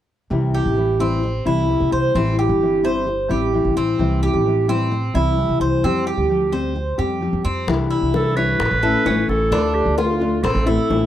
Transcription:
0.30 upright bass C2, nylon-string guitar C3 E3 G3 C4 E4
0.54 cuban tres G4
0.65 upright bass A1
0.76 nylon-string guitar E3 G3 C4 E4
1.00 nylon-string guitar E3 G3 C4 E4, cuban tres C4
1.23 muted nylon-string guitar stroke
1.45 upright bass C2, nylon-string guitar E3 G3 C4 E4, cuban tres E4
1.68 nylon-string guitar E3 G3 C4 E4
1.80 upright bass C2
1.92 upright bass C2, cuban tres C5
2.15 upright bass A1, nylon-string guitar E3 G3 C4 E4, cuban tres C4
2.39 cuban tres G4
2.49 upright bass G1
2.61 nylon-string guitar E3 G3 C4 E4
2.84 nylon-string guitar G3 C4 E4, cuban tres C5
3.07 muted nylon-string guitar stroke
3.29 upright bass A1, nylon-string guitar G3 C4 E4, cuban tres G4
3.53 nylon-string guitar E3 G3 C4 E4
3.65 upright bass A1
3.76 upright bass A1, cuban tres C4
3.98 upright bass C2, nylon-string guitar C3 E3 G3 C4 E4
4.23 cuban tres G4
4.34 upright bass A1
4.45 nylon-string guitar E3 G3 C4 E4
4.68 nylon-string guitar E3 G3 C4 E4, cuban tres C4
4.91 muted nylon-string guitar stroke
5.14 upright bass C2, nylon-string guitar E3 G3 C4 E4, cuban tres E4
5.38 nylon-string guitar E3 G3 C4 E4
5.49 upright bass C2
5.60 upright bass C2, cuban tres C5
5.83 upright bass F2, nylon-string guitar F3 G3 C4 G4, cuban tres C4
6.07 cuban tres G4
6.18 upright bass D2
6.29 nylon-string guitar F3 G3 C4 G4
6.52 nylon-string guitar G3 C4 G4, cuban tres C5
6.75 muted nylon-string guitar stroke
6.98 upright bass F2, nylon-string guitar G3 C4 G4, cuban tres G4
7.21 nylon-string guitar F3 G3 C4 G4
7.33 upright bass F2
7.44 upright bass F2, cuban tres C4
7.67 upright bass C2, nylon-string guitar C3 E3 G3 D4 E4, high bongo
7.90 cuban tres E4
8.02 upright bass C2
8.13 nylon-string guitar E3 G3 D4 E4, clarinet A4, high bongo
8.36 nylon-string guitar E3 G3 D4 E4, clarinet B4, cuban tres C#5, high bongo
8.59 upright bass A1, muted nylon-string guitar stroke, high bongo
8.71 upright bass A1
8.83 nylon-string guitar A3 C#4 E4, cuban tres A4, high bongo
9.05 upright bass A1, nylon-string guitar E3 A3 C#4 E4, cuban tres C#4, high bongo, low bongo
9.28 upright bass A1, clarinet A4, high bongo
9.51 upright bass D2, nylon-string guitar D3 A3 D4 F4, cuban tres D4, high bongo
9.75 clarinet G4
9.86 upright bass D2
9.97 nylon-string guitar D3 A3 D4 F4, clarinet F4, cuban tres F4, high bongo
10.20 nylon-string guitar A3 D4 F4, high bongo
10.43 upright bass A1, cuban tres C4, clarinet A4, muted nylon-string guitar stroke, high bongo
10.55 upright bass A1
10.66 nylon-string guitar A3 C4 E4, cuban tres E4, clarinet A4, high bongo
10.89 upright bass A1, nylon-string guitar E3 A3 C4 E4, high bongo, low bongo

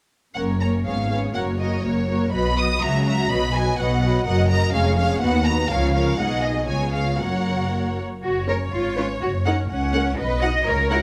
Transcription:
0.35 double bass section F#1, cello section F#2, viola section A#3 C#4, violin section A#4 C#5 F#5
0.61 viola section A#3 C#4, violin section A#4 C#5 A#5
0.86 double bass section G#1, cello section G#2, viola section B3 C#4, violin section G#4 C#5 F5
1.10 viola section B3 C#4, violin section G#4 C#5 F5
1.35 double bass section F#1, cello section F#2, viola section A#3 F#4, violin section A#4 C#5 F#5
1.59 viola section A#3 F#4, violin section A#4 C#5 D#5
1.84 double bass section F#1, cello section F#2, viola section A#3 F#4, violin section A#4 C#5
2.08 viola section A#3 F#4, violin section A#4 C#5
2.32 double bass section B1, cello section B2, viola section F#3 F#4, violin section B4 D#5 B5
2.57 viola section F#3 F#4, violin section B4 D#5 D#6
2.82 double bass section C#2, cello section C#3, viola section F#3 F#4, violin section F#4 E5 A#5
3.06 viola section F#3 F#4, violin section F#4 E5 A#5
3.30 double bass section B1, cello section B2, viola section F#3 F#4, violin section B4 D#5 B5
3.54 viola section F#3 F#4, violin section B4 D#5 G#5
3.78 double bass section B1, cello section B2, viola section F#3 F#4, violin section B4 D#5 F#5
4.02 viola section F#3 F#4, violin section B4 D#5
4.26 double bass section F#1, cello section F#2, viola section F#3 F#4, violin section A#4 D#5 F#5
4.50 viola section F#3 F#4, violin section A#4 D#5 A#5
4.74 double bass section F1, cello section F2, viola section G#3 C#4, violin section G#4 C#5 F5
4.98 viola section G#3 C#4, violin section G#4 C#5 F5
5.21 double bass section D#2, cello section D#2, viola section B3 D#4, violin section F#4 B4 F#5
5.45 viola section B3 D#4, violin section F#4 B4 A#5
5.70 double bass section C#2, cello section C#3, viola section F3 F4, violin section A#4 C#5 F5
5.94 viola section F3 F4, violin section A#4 C#5 F5
6.18 double bass section B1, cello section B2, viola section G#3 D#4, violin section G#4 D#5 F#5
6.43 viola section A#3, violin section D#5
6.68 double bass section C#2, cello section C#3, viola section B3 F4, violin section G#4 C#5 G#5
6.94 violin section F5
7.19 double bass section F#1, cello section F#2, viola section A#3 F#4, violin section A#4 C#5 F#5
8.23 double bass section F#1, cello section F#4, violin section C#5
8.48 viola section C#4 A#4, cello section A#4, violin section C#5
8.73 double bass section G#1, cello section F4
8.97 viola section C#4 B4, cello section F4, violin section C#5
9.22 double bass section F#1, cello section F#4
9.45 viola section C#4 A#4, cello section D#4, violin section F#5
9.70 double bass section C#2, cello section C#4, violin section F#5
9.93 viola section C#4 A#4, violin section F#5
10.17 double bass section B1, cello section B4, violin section D#5
10.41 viola section D#4 F#4, cello section D#5, violin section F#5
10.66 double bass section C#2, cello section A#4, violin section C#5
10.89 viola section E4 F#4, cello section A#4, violin section F#5

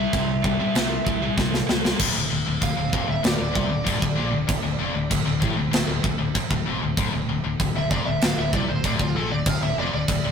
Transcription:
Already playing: distorted electric guitar C3 G3, lead electric guitar E5
0.13 fingered electric bass C2, distorted electric guitar C3 G3, kick, china
0.44 distorted electric guitar C3 G3, kick
0.59 distorted electric guitar C3 G3
0.75 fingered electric bass C2, distorted electric guitar C3 G3, snare, china
1.06 fingered electric bass C2, distorted electric guitar C3 G3, kick
1.22 distorted electric guitar C3 G3
1.38 fingered electric bass C2, distorted electric guitar C3 G3, kick, snare
1.54 snare
1.69 fingered electric bass C#2, distorted electric guitar C3 G3, snare
1.85 distorted electric guitar C3 G3, snare
1.99 fingered electric bass D1, distorted electric guitar D2, kick, crash
2.15 fingered electric bass D1, distorted electric guitar D2
2.30 fingered electric bass D1, distorted electric guitar D2
2.46 fingered electric bass D1, distorted electric guitar D2
2.61 fingered electric bass D1, distorted electric guitar D2, lead electric guitar F5, kick, crash
2.77 fingered electric bass D1, distorted electric guitar D2
2.93 fingered electric bass F1, distorted electric guitar F2, kick
3.07 fingered electric bass D1, distorted electric guitar D2, lead electric guitar E5
3.23 fingered electric bass D1, distorted electric guitar D2, lead electric guitar D5, snare, crash
3.38 fingered electric bass D1, distorted electric guitar D2
3.53 fingered electric bass C2, distorted electric guitar C3, kick
3.69 fingered electric bass D1, distorted electric guitar D2
3.84 fingered electric bass D1, distorted electric guitar D2, kick, crash
4.00 fingered electric bass D1, distorted electric guitar D2, kick
4.15 fingered electric bass A#1, distorted electric guitar A#2
4.31 fingered electric bass D1, distorted electric guitar D2
4.47 fingered electric bass D1, distorted electric guitar D2, kick, crash
4.63 fingered electric bass D1, distorted electric guitar D2
4.79 fingered electric bass F1, distorted electric guitar F2
4.94 fingered electric bass D1, distorted electric guitar D2
5.10 fingered electric bass D1, distorted electric guitar D2, kick, crash
5.26 fingered electric bass D1, distorted electric guitar D2
5.41 fingered electric bass A1, distorted electric guitar A2, kick
5.57 fingered electric bass D1, distorted electric guitar D2
5.71 fingered electric bass D1, distorted electric guitar D2, snare, crash
5.87 fingered electric bass D1, distorted electric guitar D2
6.03 fingered electric bass D1, distorted electric guitar D2, kick
6.18 fingered electric bass D1, distorted electric guitar D2
6.35 muted distorted electric guitar stroke, muted fingered electric bass stroke, kick, crash
6.51 fingered electric bass D1, distorted electric guitar D2, kick
6.66 fingered electric bass F1, distorted electric guitar F2
6.82 fingered electric bass D1, distorted electric guitar D2
6.97 fingered electric bass D1, distorted electric guitar D2, kick, crash
7.13 fingered electric bass D1, distorted electric guitar D2
7.28 fingered electric bass D1, distorted electric guitar D2
7.44 fingered electric bass D1, distorted electric guitar D2
7.60 fingered electric bass D1, distorted electric guitar D2, kick, crash
7.75 fingered electric bass D1, distorted electric guitar D2, lead electric guitar E5
7.91 fingered electric bass F1, distorted electric guitar F2, lead electric guitar D5, kick
8.06 fingered electric bass D1, distorted electric guitar D2, lead electric guitar E5
8.21 fingered electric bass D1, distorted electric guitar D2, lead electric guitar F5, snare, crash
8.38 fingered electric bass D1, distorted electric guitar D2, lead electric guitar E5
8.53 fingered electric bass C2, distorted electric guitar C3, lead electric guitar D5, kick
8.69 fingered electric bass D1, distorted electric guitar D2, lead electric guitar C5
8.84 fingered electric bass D1, distorted electric guitar D2, lead electric guitar D5, kick, crash
8.99 fingered electric bass D1, distorted electric guitar D2, lead electric guitar F4, kick
9.15 fingered electric bass A#1, distorted electric guitar A#2, lead electric guitar A4
9.31 fingered electric bass D1, distorted electric guitar D2, lead electric guitar D5
9.46 fingered electric bass D1, distorted electric guitar D2, lead electric guitar F5, kick, crash
9.62 fingered electric bass D1, distorted electric guitar D2, lead electric guitar E5
9.78 fingered electric bass F1, distorted electric guitar F2, lead electric guitar D5
9.93 fingered electric bass D1, distorted electric guitar D2, lead electric guitar D5
10.08 fingered electric bass D1, distorted electric guitar D2, kick, crash
10.24 fingered electric bass D1, distorted electric guitar D2

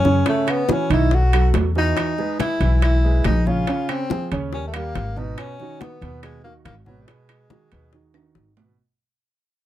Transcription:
Already playing: upright bass F#2, tenor saxophone C#4
0.05 grand piano C#3 C#4 C#5, high bongo, high conga
0.26 grand piano C#3 C#4 C#5, tenor saxophone A3, high bongo, high conga, high timbale
0.47 tenor saxophone B3, high bongo, high conga, high timbale, claves
0.68 grand piano E3 E4 F#4, high bongo, high conga
0.73 tenor saxophone C#4
0.90 upright bass B1, grand piano D#3 D#4 D#5, tenor saxophone E4, high bongo, high conga, high timbale
1.11 grand piano F#3 F#4 A4, tenor saxophone F#4, high bongo, high conga
1.33 grand piano F#3 F#4 A4, high conga, high timbale, claves
1.54 upright bass E2, high bongo, low bongo, high conga, high timbale, low timbale
1.75 grand piano E3 F#4 D#5, tenor saxophone D#4, high bongo
1.97 high bongo, high conga, high timbale, claves
2.18 grand piano G#3 G#4 B4, high bongo, high conga
2.40 tenor saxophone E4, high bongo, high conga, high timbale
2.60 upright bass B1, grand piano E3 E4 E5, high bongo, high conga, high timbale
2.82 tenor saxophone E4, high bongo, high conga, high timbale, claves
3.04 grand piano G#3 G#4 B4, high conga
3.24 upright bass A#1, tenor saxophone D#4, high bongo, low bongo, high conga, high timbale, low timbale, claves
3.46 grand piano C#3 C#4 C#5, tenor saxophone F4, high bongo, high conga
3.67 grand piano C#3 C#4 C#5, high bongo, high conga, high timbale
3.89 tenor saxophone C4, high bongo, high conga, high timbale, claves
4.10 grand piano F3 F4 G#4, high bongo, high conga
4.32 upright bass D#2, grand piano C#3 C#4 C#5, high bongo, high conga, high timbale
4.53 grand piano G3 G4 A#4, tenor saxophone C#4, high bongo, high conga
4.67 tenor saxophone A3
4.74 grand piano G3 G4 A#4, tenor saxophone A#3, high conga, high timbale, claves
4.95 upright bass G#1, high bongo, low bongo, high conga, high timbale
5.16 grand piano B2 B3 B4, tenor saxophone D#4, high bongo, high conga
5.38 tenor saxophone C#4, high bongo, high conga, high timbale, claves
5.60 grand piano D#3 D#4 F#4, high bongo, high conga
5.81 tenor saxophone B3, high bongo, high conga, high timbale
6.01 upright bass D#2, grand piano B2 B3 B4, high bongo, high conga, high timbale
6.23 tenor saxophone G#3, high bongo, high conga, high timbale, claves
6.44 grand piano D#3 D#4 F#4, tenor saxophone A#3, high conga
6.65 upright bass G#1, tenor saxophone A#3, high bongo, low bongo, high conga, high timbale, claves
6.86 grand piano B2 B3 B4, tenor saxophone F#3, high bongo, high conga
7.02 tenor saxophone G3
7.07 grand piano B2 B3 B4, tenor saxophone G#3, high bongo, high conga, high timbale
7.29 high bongo, high conga, high timbale, claves
7.50 grand piano D#3 D#4 F#4, high bongo, high conga
7.72 upright bass D#2, grand piano B2 B3 B4, high bongo, high conga, high timbale
7.93 grand piano D#3 D#4 F#4, high bongo, high conga
8.14 grand piano D#3 D#4 F#4, high conga, high timbale, claves
8.35 upright bass G#1, high bongo, low bongo
8.57 grand piano B2 B3 B4, high bongo, low timbale

